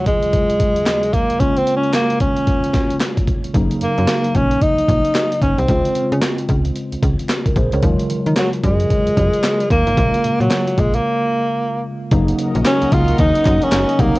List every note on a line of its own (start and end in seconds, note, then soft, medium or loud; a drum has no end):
0.00 1.36 D#2 medium
0.00 1.36 C#3 medium
0.00 1.36 F#3 medium
0.00 1.37 G#3 medium
0.00 1.37 F4 medium
0.06 1.15 G#3 medium
0.06 kick medium
0.06 closed hi-hat medium
0.23 closed hi-hat soft
0.33 kick medium
0.33 closed hi-hat medium
0.50 closed hi-hat medium
0.60 kick medium
0.60 closed hi-hat medium
0.76 closed hi-hat medium
0.86 snare loud
0.86 clap medium
0.86 closed hi-hat medium
1.03 closed hi-hat medium
1.13 1.41 A#3 medium
1.13 kick medium
1.13 closed hi-hat medium
1.30 closed hi-hat soft
1.39 3.50 C#3 medium
1.39 3.51 G#3 medium
1.39 3.51 A#3 medium
1.39 1.60 C#4 loud
1.39 3.51 F4 medium
1.39 kick loud
1.39 closed hi-hat medium
1.57 1.75 C4 medium
1.57 closed hi-hat medium
1.67 closed hi-hat medium
1.76 1.93 C#4 loud
1.83 closed hi-hat soft
1.93 2.19 A#3 loud
1.93 snare loud
1.93 clap medium
1.93 closed hi-hat medium
2.10 closed hi-hat medium
2.20 2.97 C#4 medium
2.20 kick medium
2.20 closed hi-hat medium
2.37 closed hi-hat soft
2.47 kick medium
2.47 closed hi-hat medium
2.64 closed hi-hat medium
2.73 kick medium
2.73 snare medium
2.73 closed hi-hat medium
2.90 closed hi-hat medium
3.00 snare loud
3.00 clap medium
3.00 closed hi-hat medium
3.17 kick medium
3.17 closed hi-hat medium
3.27 kick medium
3.27 closed hi-hat medium
3.44 closed hi-hat soft
3.54 3.68 F#1 loud
3.54 5.64 C#3 medium
3.54 5.65 F#3 medium
3.54 5.65 A#3 medium
3.54 5.65 D#4 medium
3.54 kick loud
3.54 closed hi-hat medium
3.71 closed hi-hat medium
3.81 3.88 F#2 soft
3.81 4.37 A#3 medium
3.81 closed hi-hat medium
3.98 4.07 F#2 loud
3.98 closed hi-hat soft
4.08 snare loud
4.08 clap medium
4.08 closed hi-hat medium
4.24 closed hi-hat soft
4.35 4.57 A#1 medium
4.35 4.64 C#4 medium
4.35 kick medium
4.35 closed hi-hat medium
4.51 closed hi-hat soft
4.62 5.42 D#4 loud
4.62 kick medium
4.62 closed hi-hat medium
4.78 4.82 A#1 soft
4.78 closed hi-hat medium
4.88 5.02 A#1 medium
4.88 kick medium
4.88 closed hi-hat medium
5.05 closed hi-hat medium
5.15 snare loud
5.15 clap medium
5.15 closed hi-hat medium
5.32 closed hi-hat medium
5.42 5.56 F#1 medium
5.42 5.60 C#4 medium
5.42 kick medium
5.42 closed hi-hat medium
5.58 5.67 C2 medium
5.58 6.12 C4 medium
5.58 closed hi-hat soft
5.68 5.82 C#2 loud
5.68 7.79 C#3 medium
5.68 7.79 G#3 medium
5.68 7.79 C4 medium
5.68 7.80 F4 medium
5.68 kick loud
5.68 closed hi-hat medium
5.85 closed hi-hat medium
5.95 6.02 C#3 soft
5.95 closed hi-hat medium
6.12 6.21 C#3 loud
6.12 closed hi-hat soft
6.22 snare loud
6.22 clap medium
6.22 closed hi-hat medium
6.38 closed hi-hat medium
6.49 6.71 C#2 medium
6.49 kick medium
6.49 closed hi-hat medium
6.65 closed hi-hat soft
6.76 closed hi-hat medium
6.92 6.97 C#2 soft
6.92 closed hi-hat medium
7.03 7.16 C#2 loud
7.03 kick medium
7.03 closed hi-hat medium
7.19 closed hi-hat medium
7.29 snare loud
7.29 clap medium
7.29 closed hi-hat medium
7.46 7.56 A#4 medium
7.46 kick medium
7.46 closed hi-hat medium
7.56 7.70 A#1 medium
7.56 7.73 G#4 medium
7.56 7.72 C5 medium
7.56 kick medium
7.56 closed hi-hat medium
7.72 7.82 C#2 medium
7.72 7.99 A#4 soft
7.72 7.98 C#5 medium
7.72 closed hi-hat medium
7.83 7.96 D#2 loud
7.83 9.93 C#3 medium
7.83 9.94 F#3 medium
7.83 9.94 G#3 medium
7.83 9.95 F4 medium
7.83 kick loud
7.83 closed hi-hat medium
7.99 closed hi-hat medium
8.10 8.17 D#3 soft
8.10 closed hi-hat medium
8.26 8.35 D#3 medium
8.26 closed hi-hat soft
8.36 8.50 F#3 medium
8.36 snare loud
8.36 clap medium
8.36 closed hi-hat medium
8.53 closed hi-hat medium
8.64 8.86 F#2 loud
8.64 9.68 G#3 loud
8.64 kick medium
8.64 closed hi-hat medium
8.80 closed hi-hat medium
8.90 kick medium
8.90 closed hi-hat medium
9.07 9.11 F#2 soft
9.07 closed hi-hat medium
9.17 9.31 F#2 medium
9.17 kick medium
9.17 closed hi-hat medium
9.33 closed hi-hat medium
9.43 snare loud
9.43 clap medium
9.43 closed hi-hat medium
9.60 closed hi-hat medium
9.70 9.84 D#2 medium
9.70 10.37 A#3 loud
9.70 kick medium
9.70 closed hi-hat medium
9.87 9.95 G#1 medium
9.87 closed hi-hat soft
9.96 10.11 A#1 loud
9.96 12.07 C#3 medium
9.96 12.08 G#3 medium
9.96 12.08 A#3 medium
9.96 12.08 F4 medium
9.96 kick loud
9.96 closed hi-hat medium
10.14 closed hi-hat medium
10.24 10.31 A#2 soft
10.24 closed hi-hat medium
10.40 10.49 A#2 medium
10.40 10.80 F#3 medium
10.40 closed hi-hat soft
10.50 snare loud
10.50 clap medium
10.50 closed hi-hat medium
10.67 closed hi-hat medium
10.78 11.00 A#1 medium
10.78 10.97 G#3 medium
10.78 kick medium
10.78 closed hi-hat medium
10.94 11.85 A#3 medium
10.94 closed hi-hat soft
12.11 12.34 F#1 loud
12.11 12.87 C#3 medium
12.11 14.19 C#3 medium
12.11 12.87 F#3 medium
12.11 12.87 A#3 medium
12.11 12.87 D#4 loud
12.11 14.19 F#4 medium
12.11 14.19 A#4 medium
12.11 14.19 D#5 medium
12.11 kick medium
12.11 closed hi-hat medium
12.28 closed hi-hat medium
12.39 closed hi-hat medium
12.55 12.64 A#1 loud
12.55 closed hi-hat soft
12.65 12.95 C#4 loud
12.65 snare loud
12.65 clap medium
12.65 closed hi-hat medium
12.82 12.86 C#2 medium
12.82 closed hi-hat medium
12.92 13.14 C#2 loud
12.92 13.19 F4 loud
12.92 kick medium
12.92 closed hi-hat medium
13.08 closed hi-hat soft
13.18 13.33 D#2 loud
13.18 13.65 D#4 loud
13.18 kick medium
13.18 closed hi-hat medium
13.35 closed hi-hat medium
13.45 13.59 F#2 loud
13.45 kick medium
13.45 clap medium
13.45 closed hi-hat medium
13.62 14.01 C#4 loud
13.62 closed hi-hat medium
13.72 13.86 F#1 medium
13.72 snare loud
13.72 clap medium
13.72 closed hi-hat medium
13.89 closed hi-hat medium
13.99 14.13 C2 loud
13.99 14.19 C#3 medium
13.99 14.19 F#3 medium
13.99 14.19 A#3 medium
13.99 14.19 D#4 medium
13.99 kick loud
13.99 closed hi-hat medium
14.15 closed hi-hat medium